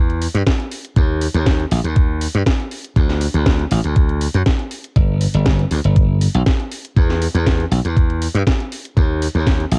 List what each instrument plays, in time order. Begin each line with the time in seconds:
Already playing: slap bass E2
0.10 closed hi-hat
0.21 open hi-hat
0.34 slap bass G2, closed hi-hat
0.46 kick, snare, closed hi-hat
0.60 closed hi-hat
0.72 open hi-hat
0.85 closed hi-hat
0.96 slap bass D#2, kick, closed hi-hat
1.22 open hi-hat
1.35 slap bass D#2, closed hi-hat
1.46 kick, snare, closed hi-hat
1.60 closed hi-hat
1.71 slap bass A#1, open hi-hat
1.84 slap bass D#2, closed hi-hat
1.96 kick, closed hi-hat
2.21 open hi-hat
2.35 slap bass G2
2.46 kick, snare, closed hi-hat
2.60 closed hi-hat
2.71 open hi-hat
2.85 closed hi-hat
2.96 slap bass D2, kick, closed hi-hat
3.09 snare
3.21 open hi-hat
3.34 slap bass D2, closed hi-hat
3.46 kick, snare, closed hi-hat
3.59 closed hi-hat
3.71 slap bass A1, open hi-hat
3.84 slap bass D2, closed hi-hat
3.96 kick, closed hi-hat
4.09 closed hi-hat
4.21 open hi-hat
4.34 slap bass F#2, closed hi-hat
4.46 kick, snare, closed hi-hat
4.59 closed hi-hat
4.71 open hi-hat
4.84 closed hi-hat
4.96 slap bass G1, kick, closed hi-hat
5.21 open hi-hat
5.34 slap bass G1, closed hi-hat
5.46 kick, snare, closed hi-hat
5.59 closed hi-hat
5.71 slap bass D2, open hi-hat
5.84 slap bass G1, closed hi-hat
5.96 kick, closed hi-hat
6.21 open hi-hat
6.34 slap bass B1, closed hi-hat
6.46 kick, snare, closed hi-hat
6.60 closed hi-hat
6.71 open hi-hat
6.85 closed hi-hat
6.96 slap bass E2, kick, closed hi-hat
7.10 snare
7.22 open hi-hat
7.35 slap bass E2, closed hi-hat
7.47 kick, snare, closed hi-hat
7.60 closed hi-hat
7.71 slap bass B1, open hi-hat
7.85 slap bass E2, closed hi-hat
7.97 kick, closed hi-hat
8.10 closed hi-hat
8.22 open hi-hat
8.34 slap bass G2, closed hi-hat
8.47 kick, snare, closed hi-hat
8.60 closed hi-hat
8.72 open hi-hat
8.85 closed hi-hat
8.96 slap bass D#2, kick, closed hi-hat
9.22 open hi-hat
9.35 slap bass D#2, closed hi-hat
9.46 kick, snare, closed hi-hat
9.60 closed hi-hat
9.71 slap bass A#1, open hi-hat